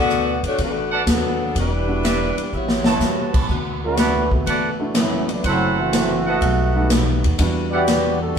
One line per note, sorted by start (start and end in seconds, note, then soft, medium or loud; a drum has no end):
0.00 0.39 D2 medium
0.00 0.98 A3 medium
0.00 0.41 B3 loud
0.00 0.98 B3 soft
0.00 0.98 D4 medium
0.00 0.98 E4 soft
0.00 0.41 F#4 loud
0.00 0.98 F#4 medium
0.00 0.41 A4 medium
0.00 0.41 D5 loud
0.10 0.45 D3 medium
0.10 0.45 A3 medium
0.10 0.45 B3 medium
0.10 0.45 F#4 medium
0.10 hi-hat pedal medium
0.43 0.57 A2 medium
0.43 0.60 D4 medium
0.43 0.60 F#4 medium
0.43 0.60 C#5 medium
0.43 ride soft
0.47 0.60 A3 medium
0.58 1.03 A1 medium
0.58 0.94 D3 soft
0.58 0.94 A3 medium
0.58 0.94 B3 medium
0.58 0.95 F#4 soft
0.58 kick soft
0.58 ride medium
0.62 1.06 A3 medium
0.62 1.06 D4 medium
0.62 1.06 F#4 medium
0.62 1.06 B4 medium
0.91 1.02 A4 medium
0.91 1.02 B4 medium
0.91 1.02 D5 medium
0.91 1.02 F#5 loud
1.06 1.52 D#2 medium
1.06 1.42 D3 medium
1.06 1.42 A3 medium
1.06 1.43 B3 medium
1.06 1.43 F#4 medium
1.06 snare medium
1.06 hi-hat pedal medium
1.06 ride medium
1.11 1.58 F#3 medium
1.11 1.58 B3 medium
1.11 1.57 D4 medium
1.11 1.57 A4 medium
1.55 2.33 E1 medium
1.55 1.90 E3 soft
1.55 2.50 G3 medium
1.55 1.90 B3 soft
1.55 1.91 D4 soft
1.55 2.50 D4 medium
1.55 2.50 E4 medium
1.55 1.91 G4 soft
1.55 kick soft
1.55 ride medium
1.59 2.50 B4 loud
1.87 2.01 G3 medium
1.87 2.02 B3 soft
1.87 2.02 D4 soft
1.87 2.02 E4 medium
1.87 2.02 F#4 medium
2.03 2.39 E3 medium
2.03 2.39 B3 medium
2.03 2.39 D4 medium
2.03 2.27 G4 medium
2.03 2.39 G4 medium
2.03 2.27 B4 medium
2.03 2.27 D5 medium
2.03 2.27 E5 medium
2.03 snare medium
2.03 hi-hat pedal medium
2.03 ride medium
2.37 muted upright bass stroke soft
2.37 ride soft
2.53 2.98 A1 medium
2.53 2.88 A2 soft
2.53 2.88 G3 soft
2.53 3.36 B3 medium
2.53 2.88 C#4 medium
2.53 3.35 E4 medium
2.53 2.89 F#4 medium
2.53 3.36 G4 medium
2.53 3.36 C#5 medium
2.68 snare medium
2.84 3.46 G3 medium
2.84 3.46 B3 medium
2.84 3.46 C#4 medium
2.84 3.46 E4 medium
2.84 3.47 B4 medium
2.84 3.47 C#5 medium
2.84 3.47 F#5 medium
2.84 3.47 A5 medium
2.84 snare medium
3.00 3.46 A2 medium
3.00 3.36 A2 medium
3.00 3.36 G3 medium
3.00 3.36 C#4 medium
3.00 3.37 F#4 medium
3.00 snare medium
3.00 hi-hat pedal medium
3.34 kick medium
3.34 crash medium
3.49 4.43 D2 medium
3.49 3.84 D3 medium
3.49 3.85 A3 soft
3.49 3.85 B3 medium
3.49 3.85 F#4 medium
3.49 kick soft
3.83 4.29 A3 medium
3.83 4.29 D4 medium
3.83 4.29 F#4 loud
3.83 4.28 B4 loud
3.97 4.33 D3 medium
3.97 4.33 A3 medium
3.97 4.33 B3 medium
3.97 4.33 F#4 medium
3.97 4.21 A4 medium
3.97 4.21 B4 medium
3.97 4.21 D5 medium
3.97 4.21 F#5 medium
3.97 snare medium
3.97 hi-hat pedal medium
3.97 ride medium
4.31 4.77 D3 medium
4.31 4.77 A3 medium
4.31 4.77 B3 medium
4.31 4.77 F#4 medium
4.31 kick medium
4.46 5.40 A1 medium
4.46 4.81 D3 medium
4.46 4.82 A3 soft
4.46 4.82 B3 medium
4.46 4.82 F#4 medium
4.46 4.70 A4 medium
4.46 4.70 B4 medium
4.46 4.70 D5 medium
4.46 4.70 F#5 loud
4.46 kick soft
4.46 ride medium
4.80 4.94 A3 medium
4.80 4.94 B3 medium
4.80 4.94 D4 medium
4.80 4.94 E4 medium
4.80 4.94 F#4 medium
4.94 5.30 D3 medium
4.94 5.27 F#3 medium
4.94 5.30 A3 medium
4.94 5.28 A3 medium
4.94 5.31 B3 medium
4.94 5.28 C#4 medium
4.94 5.27 E4 medium
4.94 5.31 F#4 medium
4.94 snare medium
4.94 hi-hat pedal medium
4.94 ride medium
5.29 5.44 F#3 medium
5.29 5.44 A3 medium
5.29 5.45 B3 medium
5.29 5.45 D4 medium
5.29 ride soft
5.44 6.37 F#1 medium
5.44 5.79 F#2 soft
5.44 5.80 E3 medium
5.44 5.76 F#3 medium
5.44 5.76 A3 medium
5.44 5.80 A3 soft
5.44 5.76 C4 medium
5.44 5.80 C4 medium
5.44 5.76 E4 loud
5.44 6.20 A4 loud
5.44 6.20 C5 medium
5.44 6.20 E5 medium
5.44 6.20 F#5 loud
5.44 kick soft
5.44 ride medium
5.78 6.42 E3 medium
5.78 7.24 A3 medium
5.78 6.42 C4 medium
5.78 7.25 F#4 loud
5.93 6.28 F#2 medium
5.93 6.28 E3 medium
5.93 6.23 F#3 medium
5.93 6.23 A3 medium
5.93 6.28 A3 medium
5.93 6.23 C4 soft
5.93 6.29 C4 medium
5.93 6.24 E4 soft
5.93 6.24 F#4 medium
5.93 snare medium
5.93 hi-hat pedal soft
5.93 ride medium
6.26 6.88 A4 loud
6.26 6.87 B4 medium
6.26 6.87 D#5 medium
6.26 6.87 F#5 loud
6.41 7.20 B1 medium
6.41 6.76 B2 medium
6.41 6.77 G3 medium
6.41 6.77 A3 medium
6.41 6.77 D#4 medium
6.41 kick soft
6.41 ride medium
6.76 7.36 G3 medium
6.76 7.36 A3 medium
6.76 7.37 B3 medium
6.76 7.36 D#4 medium
6.76 7.37 F#4 medium
6.90 7.25 B2 medium
6.90 7.26 G3 medium
6.90 7.26 A3 medium
6.90 7.26 D#4 medium
6.90 snare medium
6.90 hi-hat pedal medium
6.90 ride medium
7.24 7.38 D#2 medium
7.24 ride soft
7.39 8.33 E2 medium
7.39 7.74 E3 medium
7.39 8.39 G3 medium
7.39 7.75 G3 medium
7.39 8.39 B3 medium
7.39 8.39 D4 medium
7.39 7.75 D4 medium
7.39 8.39 E4 medium
7.39 8.39 F#4 medium
7.39 7.75 F#4 medium
7.39 kick soft
7.39 ride medium
7.71 8.18 B3 medium
7.71 8.17 F#4 loud
7.71 8.18 G4 loud
7.71 7.83 G4 medium
7.71 8.17 D5 loud
7.71 7.83 D5 medium
7.71 7.83 E5 medium
7.71 7.83 F#5 medium
7.87 8.22 E3 medium
7.87 8.23 G3 medium
7.87 8.23 D4 medium
7.87 8.23 F#4 medium
7.87 snare medium
7.87 hi-hat pedal medium
7.87 ride medium
8.21 8.39 G3 medium
8.21 8.39 D4 medium
8.21 8.39 F#4 medium
8.21 8.39 A4 medium
8.35 8.39 E3 soft